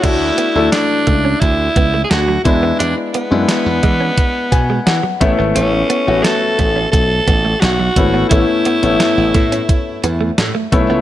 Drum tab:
CC |x---------------|----------------|----------------|----------------|
HH |x-x-x-x-x-x-x-x-|x-x-x-x-x-x-x-x-|x-x-x-x-x-x-x-x-|x-xxx-xxx-x-x-x-|
SD |----o-------o---|----o-------o---|----o-------o---|----o-------o---|
BD |o-----o-o-o---o-|------o-o-o---o-|------o-o-o---o-|o-----o-o-----o-|